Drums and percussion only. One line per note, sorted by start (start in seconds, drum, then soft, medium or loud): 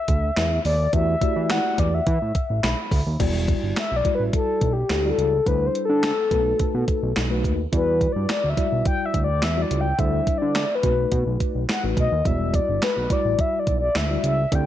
0.08 kick loud
0.08 closed hi-hat medium
0.37 snare loud
0.37 clap medium
0.37 closed hi-hat medium
0.65 open hi-hat medium
0.93 kick loud
0.93 closed hi-hat loud
1.21 kick loud
1.21 closed hi-hat medium
1.50 snare loud
1.50 clap loud
1.50 closed hi-hat medium
1.78 kick medium
1.78 closed hi-hat medium
2.07 kick loud
2.07 closed hi-hat medium
2.35 kick medium
2.35 closed hi-hat medium
2.64 snare loud
2.64 clap medium
2.64 closed hi-hat medium
2.91 kick loud
2.91 open hi-hat medium
3.20 kick loud
3.20 closed hi-hat loud
3.20 crash loud
3.48 kick medium
3.48 closed hi-hat medium
3.76 snare loud
3.76 clap medium
3.76 closed hi-hat medium
4.05 kick loud
4.05 closed hi-hat medium
4.33 kick loud
4.33 closed hi-hat medium
4.61 kick medium
4.61 closed hi-hat medium
4.90 snare loud
4.90 clap medium
4.90 closed hi-hat medium
5.19 closed hi-hat medium
5.46 kick loud
5.46 closed hi-hat loud
5.75 closed hi-hat medium
6.03 snare loud
6.03 clap medium
6.03 closed hi-hat medium
6.31 kick medium
6.31 closed hi-hat medium
6.59 kick loud
6.59 closed hi-hat medium
6.88 kick medium
6.88 closed hi-hat medium
7.16 snare loud
7.16 clap medium
7.16 closed hi-hat medium
7.44 kick loud
7.44 closed hi-hat medium
7.73 kick loud
7.73 closed hi-hat loud
8.01 kick medium
8.01 closed hi-hat medium
8.29 snare loud
8.29 clap loud
8.29 closed hi-hat medium
8.57 kick medium
8.57 closed hi-hat medium
8.85 kick loud
8.85 closed hi-hat medium
9.14 kick medium
9.14 closed hi-hat medium
9.42 snare loud
9.42 clap medium
9.42 closed hi-hat medium
9.71 closed hi-hat medium
9.99 kick loud
9.99 closed hi-hat medium
10.27 kick medium
10.27 closed hi-hat medium
10.55 snare loud
10.55 clap loud
10.55 closed hi-hat medium
10.83 kick medium
10.83 closed hi-hat medium
11.12 kick loud
11.12 closed hi-hat loud
11.40 kick medium
11.40 closed hi-hat medium
11.69 snare loud
11.69 clap medium
11.69 closed hi-hat medium
11.97 kick loud
11.97 closed hi-hat medium
12.25 kick loud
12.25 closed hi-hat medium
12.54 kick medium
12.54 closed hi-hat medium
12.82 snare loud
12.82 clap medium
12.82 closed hi-hat medium
13.10 kick medium
13.10 closed hi-hat medium
13.39 kick loud
13.39 closed hi-hat medium
13.67 kick medium
13.67 closed hi-hat medium
13.95 snare loud
13.95 clap loud
13.95 closed hi-hat medium
14.24 closed hi-hat medium
14.52 kick loud
14.52 closed hi-hat medium